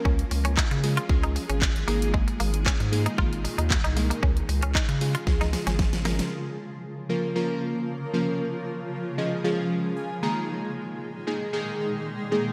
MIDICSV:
0, 0, Header, 1, 7, 480
1, 0, Start_track
1, 0, Key_signature, -5, "major"
1, 0, Tempo, 521739
1, 49, Time_signature, 4, 2, 24, 8
1, 11525, End_track
2, 0, Start_track
2, 0, Title_t, "Clean electric guitar"
2, 0, Program_c, 0, 27
2, 46, Note_on_c, 0, 61, 88
2, 155, Note_off_c, 0, 61, 0
2, 413, Note_on_c, 0, 61, 86
2, 510, Note_off_c, 0, 61, 0
2, 527, Note_on_c, 0, 63, 88
2, 636, Note_off_c, 0, 63, 0
2, 895, Note_on_c, 0, 65, 74
2, 991, Note_off_c, 0, 65, 0
2, 1136, Note_on_c, 0, 63, 86
2, 1232, Note_off_c, 0, 63, 0
2, 1376, Note_on_c, 0, 61, 76
2, 1472, Note_off_c, 0, 61, 0
2, 1727, Note_on_c, 0, 58, 85
2, 1836, Note_off_c, 0, 58, 0
2, 1966, Note_on_c, 0, 56, 87
2, 2075, Note_off_c, 0, 56, 0
2, 2208, Note_on_c, 0, 58, 75
2, 2316, Note_off_c, 0, 58, 0
2, 2449, Note_on_c, 0, 61, 92
2, 2557, Note_off_c, 0, 61, 0
2, 2815, Note_on_c, 0, 63, 83
2, 2911, Note_off_c, 0, 63, 0
2, 2930, Note_on_c, 0, 65, 83
2, 3037, Note_off_c, 0, 65, 0
2, 3296, Note_on_c, 0, 63, 77
2, 3392, Note_off_c, 0, 63, 0
2, 3535, Note_on_c, 0, 63, 78
2, 3631, Note_off_c, 0, 63, 0
2, 3776, Note_on_c, 0, 58, 76
2, 3872, Note_off_c, 0, 58, 0
2, 3889, Note_on_c, 0, 61, 85
2, 3997, Note_off_c, 0, 61, 0
2, 4258, Note_on_c, 0, 61, 86
2, 4353, Note_off_c, 0, 61, 0
2, 4369, Note_on_c, 0, 63, 92
2, 4477, Note_off_c, 0, 63, 0
2, 4736, Note_on_c, 0, 65, 73
2, 4832, Note_off_c, 0, 65, 0
2, 4977, Note_on_c, 0, 63, 84
2, 5072, Note_off_c, 0, 63, 0
2, 5216, Note_on_c, 0, 61, 82
2, 5312, Note_off_c, 0, 61, 0
2, 5569, Note_on_c, 0, 58, 82
2, 5677, Note_off_c, 0, 58, 0
2, 11525, End_track
3, 0, Start_track
3, 0, Title_t, "Synth keys"
3, 0, Program_c, 1, 88
3, 765, Note_on_c, 1, 56, 83
3, 767, Note_on_c, 1, 61, 75
3, 769, Note_on_c, 1, 65, 76
3, 769, Note_on_c, 1, 68, 89
3, 936, Note_off_c, 1, 56, 0
3, 937, Note_off_c, 1, 61, 0
3, 938, Note_off_c, 1, 65, 0
3, 938, Note_off_c, 1, 68, 0
3, 1007, Note_on_c, 1, 56, 91
3, 1007, Note_on_c, 1, 61, 83
3, 1010, Note_on_c, 1, 65, 82
3, 1011, Note_on_c, 1, 68, 97
3, 1503, Note_off_c, 1, 56, 0
3, 1503, Note_off_c, 1, 61, 0
3, 1504, Note_off_c, 1, 65, 0
3, 1505, Note_off_c, 1, 68, 0
3, 1726, Note_on_c, 1, 56, 90
3, 1727, Note_on_c, 1, 58, 82
3, 1729, Note_on_c, 1, 63, 86
3, 1731, Note_on_c, 1, 68, 100
3, 2498, Note_off_c, 1, 56, 0
3, 2499, Note_off_c, 1, 58, 0
3, 2500, Note_off_c, 1, 63, 0
3, 2501, Note_off_c, 1, 68, 0
3, 2684, Note_on_c, 1, 56, 85
3, 2686, Note_on_c, 1, 58, 76
3, 2688, Note_on_c, 1, 63, 77
3, 2689, Note_on_c, 1, 68, 94
3, 2856, Note_off_c, 1, 56, 0
3, 2857, Note_off_c, 1, 58, 0
3, 2858, Note_off_c, 1, 63, 0
3, 2858, Note_off_c, 1, 68, 0
3, 2925, Note_on_c, 1, 56, 86
3, 2926, Note_on_c, 1, 58, 80
3, 2927, Note_on_c, 1, 63, 82
3, 2929, Note_on_c, 1, 65, 99
3, 3421, Note_off_c, 1, 56, 0
3, 3422, Note_off_c, 1, 58, 0
3, 3423, Note_off_c, 1, 63, 0
3, 3424, Note_off_c, 1, 65, 0
3, 3647, Note_on_c, 1, 56, 83
3, 3648, Note_on_c, 1, 58, 75
3, 3650, Note_on_c, 1, 63, 80
3, 3652, Note_on_c, 1, 70, 88
3, 3888, Note_off_c, 1, 56, 0
3, 3889, Note_off_c, 1, 58, 0
3, 3889, Note_off_c, 1, 63, 0
3, 3891, Note_off_c, 1, 70, 0
3, 4607, Note_on_c, 1, 56, 80
3, 4610, Note_on_c, 1, 61, 72
3, 4611, Note_on_c, 1, 65, 78
3, 4613, Note_on_c, 1, 68, 89
3, 4777, Note_off_c, 1, 56, 0
3, 4779, Note_off_c, 1, 61, 0
3, 4779, Note_off_c, 1, 65, 0
3, 4780, Note_off_c, 1, 68, 0
3, 4847, Note_on_c, 1, 56, 92
3, 4849, Note_on_c, 1, 61, 80
3, 4852, Note_on_c, 1, 65, 84
3, 4852, Note_on_c, 1, 68, 100
3, 5343, Note_off_c, 1, 56, 0
3, 5344, Note_off_c, 1, 61, 0
3, 5345, Note_off_c, 1, 65, 0
3, 5345, Note_off_c, 1, 68, 0
3, 5567, Note_on_c, 1, 56, 83
3, 5569, Note_on_c, 1, 61, 75
3, 5572, Note_on_c, 1, 65, 78
3, 5573, Note_on_c, 1, 70, 90
3, 5808, Note_off_c, 1, 56, 0
3, 5809, Note_off_c, 1, 61, 0
3, 5810, Note_off_c, 1, 65, 0
3, 5811, Note_off_c, 1, 70, 0
3, 6524, Note_on_c, 1, 53, 80
3, 6526, Note_on_c, 1, 58, 77
3, 6528, Note_on_c, 1, 61, 77
3, 6528, Note_on_c, 1, 65, 79
3, 6529, Note_on_c, 1, 70, 92
3, 6695, Note_off_c, 1, 53, 0
3, 6697, Note_off_c, 1, 58, 0
3, 6698, Note_off_c, 1, 61, 0
3, 6698, Note_off_c, 1, 65, 0
3, 6698, Note_off_c, 1, 70, 0
3, 6764, Note_on_c, 1, 53, 86
3, 6767, Note_on_c, 1, 58, 81
3, 6767, Note_on_c, 1, 61, 81
3, 6768, Note_on_c, 1, 65, 82
3, 6770, Note_on_c, 1, 70, 99
3, 7261, Note_off_c, 1, 53, 0
3, 7262, Note_off_c, 1, 58, 0
3, 7263, Note_off_c, 1, 61, 0
3, 7263, Note_off_c, 1, 65, 0
3, 7264, Note_off_c, 1, 70, 0
3, 7485, Note_on_c, 1, 53, 85
3, 7485, Note_on_c, 1, 58, 76
3, 7486, Note_on_c, 1, 61, 82
3, 7487, Note_on_c, 1, 65, 75
3, 7489, Note_on_c, 1, 70, 96
3, 7727, Note_off_c, 1, 53, 0
3, 7727, Note_off_c, 1, 58, 0
3, 7727, Note_off_c, 1, 61, 0
3, 7728, Note_off_c, 1, 65, 0
3, 7729, Note_off_c, 1, 70, 0
3, 8445, Note_on_c, 1, 53, 85
3, 8445, Note_on_c, 1, 56, 80
3, 8446, Note_on_c, 1, 75, 72
3, 8447, Note_on_c, 1, 61, 79
3, 8447, Note_on_c, 1, 65, 77
3, 8449, Note_on_c, 1, 68, 89
3, 8616, Note_off_c, 1, 53, 0
3, 8616, Note_off_c, 1, 56, 0
3, 8617, Note_off_c, 1, 61, 0
3, 8617, Note_off_c, 1, 65, 0
3, 8618, Note_off_c, 1, 68, 0
3, 8671, Note_off_c, 1, 75, 0
3, 8686, Note_on_c, 1, 53, 89
3, 8688, Note_on_c, 1, 56, 82
3, 8688, Note_on_c, 1, 77, 80
3, 8689, Note_on_c, 1, 61, 85
3, 8689, Note_on_c, 1, 65, 81
3, 8691, Note_on_c, 1, 68, 98
3, 9135, Note_off_c, 1, 77, 0
3, 9168, Note_on_c, 1, 80, 77
3, 9182, Note_off_c, 1, 53, 0
3, 9183, Note_off_c, 1, 56, 0
3, 9184, Note_off_c, 1, 61, 0
3, 9184, Note_off_c, 1, 65, 0
3, 9184, Note_off_c, 1, 68, 0
3, 9391, Note_off_c, 1, 80, 0
3, 9406, Note_on_c, 1, 51, 91
3, 9408, Note_on_c, 1, 56, 86
3, 9408, Note_on_c, 1, 82, 79
3, 9409, Note_on_c, 1, 58, 84
3, 9410, Note_on_c, 1, 63, 81
3, 9412, Note_on_c, 1, 68, 101
3, 9632, Note_off_c, 1, 82, 0
3, 10178, Note_off_c, 1, 51, 0
3, 10179, Note_off_c, 1, 56, 0
3, 10180, Note_off_c, 1, 58, 0
3, 10180, Note_off_c, 1, 63, 0
3, 10181, Note_off_c, 1, 68, 0
3, 10366, Note_on_c, 1, 51, 81
3, 10367, Note_on_c, 1, 56, 76
3, 10367, Note_on_c, 1, 58, 76
3, 10369, Note_on_c, 1, 63, 75
3, 10371, Note_on_c, 1, 68, 94
3, 10537, Note_off_c, 1, 51, 0
3, 10537, Note_off_c, 1, 56, 0
3, 10537, Note_off_c, 1, 58, 0
3, 10538, Note_off_c, 1, 63, 0
3, 10539, Note_off_c, 1, 68, 0
3, 10606, Note_on_c, 1, 51, 92
3, 10607, Note_on_c, 1, 56, 85
3, 10608, Note_on_c, 1, 58, 82
3, 10609, Note_on_c, 1, 63, 86
3, 10610, Note_on_c, 1, 68, 99
3, 11102, Note_off_c, 1, 51, 0
3, 11103, Note_off_c, 1, 56, 0
3, 11103, Note_off_c, 1, 58, 0
3, 11104, Note_off_c, 1, 63, 0
3, 11104, Note_off_c, 1, 68, 0
3, 11329, Note_on_c, 1, 51, 86
3, 11330, Note_on_c, 1, 58, 79
3, 11331, Note_on_c, 1, 56, 79
3, 11331, Note_on_c, 1, 63, 78
3, 11333, Note_on_c, 1, 68, 92
3, 11525, Note_off_c, 1, 51, 0
3, 11525, Note_off_c, 1, 56, 0
3, 11525, Note_off_c, 1, 58, 0
3, 11525, Note_off_c, 1, 63, 0
3, 11525, Note_off_c, 1, 68, 0
3, 11525, End_track
4, 0, Start_track
4, 0, Title_t, "Ambient pad"
4, 0, Program_c, 2, 92
4, 0, Note_on_c, 2, 53, 75
4, 0, Note_on_c, 2, 61, 87
4, 49, Note_on_c, 2, 56, 76
4, 49, Note_on_c, 2, 65, 76
4, 49, Note_on_c, 2, 68, 95
4, 1691, Note_off_c, 2, 61, 0
4, 1692, Note_off_c, 2, 53, 0
4, 1712, Note_off_c, 2, 65, 0
4, 1728, Note_on_c, 2, 46, 85
4, 1729, Note_on_c, 2, 63, 80
4, 1730, Note_on_c, 2, 51, 79
4, 3852, Note_off_c, 2, 56, 0
4, 3852, Note_off_c, 2, 68, 0
4, 3867, Note_off_c, 2, 46, 0
4, 3867, Note_off_c, 2, 63, 0
4, 3868, Note_off_c, 2, 51, 0
4, 3891, Note_on_c, 2, 65, 76
4, 3893, Note_on_c, 2, 49, 78
4, 3893, Note_on_c, 2, 53, 78
4, 3893, Note_on_c, 2, 56, 75
4, 3893, Note_on_c, 2, 68, 90
4, 5791, Note_off_c, 2, 65, 0
4, 5791, Note_off_c, 2, 68, 0
4, 5792, Note_off_c, 2, 49, 0
4, 5792, Note_off_c, 2, 53, 0
4, 5792, Note_off_c, 2, 56, 0
4, 5808, Note_on_c, 2, 49, 83
4, 5809, Note_on_c, 2, 53, 77
4, 5809, Note_on_c, 2, 58, 76
4, 5809, Note_on_c, 2, 65, 72
4, 5809, Note_on_c, 2, 70, 87
4, 7710, Note_off_c, 2, 58, 0
4, 7710, Note_off_c, 2, 70, 0
4, 7730, Note_on_c, 2, 56, 78
4, 7730, Note_on_c, 2, 68, 95
4, 9373, Note_off_c, 2, 49, 0
4, 9373, Note_off_c, 2, 53, 0
4, 9373, Note_off_c, 2, 65, 0
4, 9393, Note_off_c, 2, 68, 0
4, 9407, Note_on_c, 2, 46, 91
4, 9407, Note_on_c, 2, 51, 78
4, 9407, Note_on_c, 2, 68, 93
4, 9408, Note_on_c, 2, 63, 77
4, 11525, Note_off_c, 2, 46, 0
4, 11525, Note_off_c, 2, 51, 0
4, 11525, Note_off_c, 2, 56, 0
4, 11525, Note_off_c, 2, 63, 0
4, 11525, Note_off_c, 2, 68, 0
4, 11525, End_track
5, 0, Start_track
5, 0, Title_t, "Analog synth bass"
5, 0, Program_c, 3, 38
5, 47, Note_on_c, 3, 37, 102
5, 220, Note_off_c, 3, 37, 0
5, 289, Note_on_c, 3, 37, 100
5, 551, Note_off_c, 3, 37, 0
5, 655, Note_on_c, 3, 49, 89
5, 908, Note_off_c, 3, 49, 0
5, 1007, Note_on_c, 3, 37, 98
5, 1270, Note_off_c, 3, 37, 0
5, 1377, Note_on_c, 3, 32, 100
5, 1549, Note_off_c, 3, 32, 0
5, 1618, Note_on_c, 3, 32, 91
5, 1698, Note_off_c, 3, 32, 0
5, 1731, Note_on_c, 3, 32, 106
5, 2073, Note_off_c, 3, 32, 0
5, 2213, Note_on_c, 3, 32, 103
5, 2474, Note_off_c, 3, 32, 0
5, 2578, Note_on_c, 3, 44, 92
5, 2830, Note_off_c, 3, 44, 0
5, 2929, Note_on_c, 3, 32, 100
5, 3191, Note_off_c, 3, 32, 0
5, 3298, Note_on_c, 3, 39, 97
5, 3469, Note_off_c, 3, 39, 0
5, 3538, Note_on_c, 3, 36, 97
5, 3790, Note_off_c, 3, 36, 0
5, 3891, Note_on_c, 3, 37, 100
5, 4062, Note_off_c, 3, 37, 0
5, 4130, Note_on_c, 3, 37, 103
5, 4393, Note_off_c, 3, 37, 0
5, 4495, Note_on_c, 3, 49, 90
5, 4748, Note_off_c, 3, 49, 0
5, 4847, Note_on_c, 3, 37, 95
5, 5110, Note_off_c, 3, 37, 0
5, 5216, Note_on_c, 3, 32, 94
5, 5388, Note_off_c, 3, 32, 0
5, 5457, Note_on_c, 3, 32, 91
5, 5709, Note_off_c, 3, 32, 0
5, 11525, End_track
6, 0, Start_track
6, 0, Title_t, "Muted clean electric guitar strokes"
6, 288, Note_on_c, 9, 29, 46
6, 380, Note_off_c, 9, 29, 0
6, 656, Note_on_c, 9, 29, 48
6, 748, Note_off_c, 9, 29, 0
6, 1249, Note_on_c, 9, 29, 46
6, 1341, Note_off_c, 9, 29, 0
6, 2095, Note_on_c, 9, 29, 51
6, 2187, Note_off_c, 9, 29, 0
6, 2577, Note_on_c, 9, 29, 48
6, 2669, Note_off_c, 9, 29, 0
6, 3170, Note_on_c, 9, 29, 45
6, 3262, Note_off_c, 9, 29, 0
6, 3649, Note_on_c, 9, 29, 47
6, 3741, Note_off_c, 9, 29, 0
6, 4130, Note_on_c, 9, 29, 47
6, 4222, Note_off_c, 9, 29, 0
6, 4497, Note_on_c, 9, 29, 46
6, 4589, Note_off_c, 9, 29, 0
6, 5090, Note_on_c, 9, 29, 48
6, 5182, Note_off_c, 9, 29, 0
6, 11525, End_track
7, 0, Start_track
7, 0, Title_t, "Drums"
7, 48, Note_on_c, 9, 36, 116
7, 140, Note_off_c, 9, 36, 0
7, 175, Note_on_c, 9, 42, 54
7, 267, Note_off_c, 9, 42, 0
7, 287, Note_on_c, 9, 46, 78
7, 379, Note_off_c, 9, 46, 0
7, 413, Note_on_c, 9, 42, 79
7, 505, Note_off_c, 9, 42, 0
7, 526, Note_on_c, 9, 39, 121
7, 529, Note_on_c, 9, 36, 119
7, 618, Note_off_c, 9, 39, 0
7, 621, Note_off_c, 9, 36, 0
7, 655, Note_on_c, 9, 42, 50
7, 747, Note_off_c, 9, 42, 0
7, 769, Note_on_c, 9, 46, 75
7, 861, Note_off_c, 9, 46, 0
7, 895, Note_on_c, 9, 42, 70
7, 987, Note_off_c, 9, 42, 0
7, 1007, Note_on_c, 9, 36, 127
7, 1099, Note_off_c, 9, 36, 0
7, 1136, Note_on_c, 9, 42, 55
7, 1228, Note_off_c, 9, 42, 0
7, 1251, Note_on_c, 9, 46, 73
7, 1343, Note_off_c, 9, 46, 0
7, 1376, Note_on_c, 9, 42, 76
7, 1468, Note_off_c, 9, 42, 0
7, 1487, Note_on_c, 9, 39, 121
7, 1488, Note_on_c, 9, 36, 121
7, 1579, Note_off_c, 9, 39, 0
7, 1580, Note_off_c, 9, 36, 0
7, 1618, Note_on_c, 9, 42, 49
7, 1710, Note_off_c, 9, 42, 0
7, 1729, Note_on_c, 9, 46, 79
7, 1821, Note_off_c, 9, 46, 0
7, 1860, Note_on_c, 9, 42, 81
7, 1952, Note_off_c, 9, 42, 0
7, 1969, Note_on_c, 9, 36, 109
7, 2061, Note_off_c, 9, 36, 0
7, 2096, Note_on_c, 9, 42, 56
7, 2188, Note_off_c, 9, 42, 0
7, 2208, Note_on_c, 9, 46, 80
7, 2300, Note_off_c, 9, 46, 0
7, 2334, Note_on_c, 9, 42, 79
7, 2426, Note_off_c, 9, 42, 0
7, 2449, Note_on_c, 9, 39, 121
7, 2450, Note_on_c, 9, 36, 125
7, 2541, Note_off_c, 9, 39, 0
7, 2542, Note_off_c, 9, 36, 0
7, 2579, Note_on_c, 9, 42, 49
7, 2671, Note_off_c, 9, 42, 0
7, 2693, Note_on_c, 9, 46, 80
7, 2785, Note_off_c, 9, 46, 0
7, 2816, Note_on_c, 9, 42, 71
7, 2908, Note_off_c, 9, 42, 0
7, 2928, Note_on_c, 9, 36, 122
7, 3020, Note_off_c, 9, 36, 0
7, 3061, Note_on_c, 9, 42, 50
7, 3153, Note_off_c, 9, 42, 0
7, 3173, Note_on_c, 9, 46, 76
7, 3265, Note_off_c, 9, 46, 0
7, 3299, Note_on_c, 9, 42, 74
7, 3391, Note_off_c, 9, 42, 0
7, 3409, Note_on_c, 9, 36, 120
7, 3409, Note_on_c, 9, 39, 122
7, 3501, Note_off_c, 9, 36, 0
7, 3501, Note_off_c, 9, 39, 0
7, 3538, Note_on_c, 9, 42, 49
7, 3630, Note_off_c, 9, 42, 0
7, 3650, Note_on_c, 9, 46, 77
7, 3742, Note_off_c, 9, 46, 0
7, 3781, Note_on_c, 9, 42, 80
7, 3873, Note_off_c, 9, 42, 0
7, 3890, Note_on_c, 9, 36, 114
7, 3982, Note_off_c, 9, 36, 0
7, 4018, Note_on_c, 9, 42, 52
7, 4110, Note_off_c, 9, 42, 0
7, 4131, Note_on_c, 9, 46, 74
7, 4223, Note_off_c, 9, 46, 0
7, 4255, Note_on_c, 9, 42, 81
7, 4347, Note_off_c, 9, 42, 0
7, 4370, Note_on_c, 9, 36, 118
7, 4370, Note_on_c, 9, 39, 122
7, 4462, Note_off_c, 9, 36, 0
7, 4462, Note_off_c, 9, 39, 0
7, 4497, Note_on_c, 9, 42, 52
7, 4589, Note_off_c, 9, 42, 0
7, 4611, Note_on_c, 9, 46, 74
7, 4703, Note_off_c, 9, 46, 0
7, 4736, Note_on_c, 9, 42, 74
7, 4828, Note_off_c, 9, 42, 0
7, 4848, Note_on_c, 9, 36, 121
7, 4850, Note_on_c, 9, 38, 62
7, 4940, Note_off_c, 9, 36, 0
7, 4942, Note_off_c, 9, 38, 0
7, 4976, Note_on_c, 9, 38, 56
7, 4978, Note_on_c, 9, 42, 52
7, 5068, Note_off_c, 9, 38, 0
7, 5070, Note_off_c, 9, 42, 0
7, 5088, Note_on_c, 9, 38, 72
7, 5090, Note_on_c, 9, 46, 75
7, 5180, Note_off_c, 9, 38, 0
7, 5182, Note_off_c, 9, 46, 0
7, 5215, Note_on_c, 9, 42, 76
7, 5216, Note_on_c, 9, 38, 69
7, 5307, Note_off_c, 9, 42, 0
7, 5308, Note_off_c, 9, 38, 0
7, 5327, Note_on_c, 9, 36, 126
7, 5327, Note_on_c, 9, 38, 94
7, 5419, Note_off_c, 9, 36, 0
7, 5419, Note_off_c, 9, 38, 0
7, 5456, Note_on_c, 9, 38, 84
7, 5456, Note_on_c, 9, 42, 46
7, 5548, Note_off_c, 9, 38, 0
7, 5548, Note_off_c, 9, 42, 0
7, 5567, Note_on_c, 9, 46, 81
7, 5568, Note_on_c, 9, 38, 108
7, 5659, Note_off_c, 9, 46, 0
7, 5660, Note_off_c, 9, 38, 0
7, 5695, Note_on_c, 9, 38, 92
7, 5698, Note_on_c, 9, 42, 79
7, 5787, Note_off_c, 9, 38, 0
7, 5790, Note_off_c, 9, 42, 0
7, 11525, End_track
0, 0, End_of_file